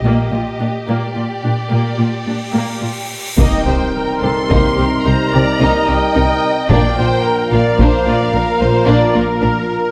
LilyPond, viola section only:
\new Staff \with { instrumentName = "Viola section" } { \time 12/8 \key bes \mixolydian \tempo 4. = 73 bes8 f'8 d'8 bes8 f'8 d'8 bes8 f'8 d'8 bes8 f'8 r8 | \key c \minor ees''8 c''8 bes'8 a'8 g'8 bes'8 c''8 d''8 ees''2 | d''8 c''8 bes'8 d''8 c''8 d''8 bes'8 c''8 d''8 bes'4. | }